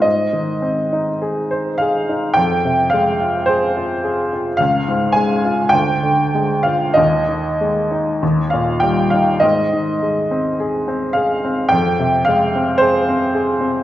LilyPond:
\new Staff \with { instrumentName = "Upright piano" } { \time 4/4 \key aes \major \tempo 4 = 52 << { ees''4. f''8 g''8 f''8 c''4 | f''8 aes''8 g''8. f''16 ees''4~ ees''16 f''16 g''16 f''16 | ees''4. f''8 g''8 f''8 c''4 | } \\ { aes,16 ees16 c'16 ees'16 aes'16 c''16 aes'16 ees'16 f,16 c16 aes16 f'16 aes'16 f'16 aes'16 f'16 | des,16 aes,16 aes16 f'16 d,16 d16 aes16 f'16 ees,16 ees16 aes16 ees'16 ees,16 bes,16 g16 ees'16 | aes,16 ees16 aes16 c'16 aes'16 c'16 aes'16 c'16 f,16 c16 aes16 c'16 aes'16 c'16 aes'16 c'16 | } >> }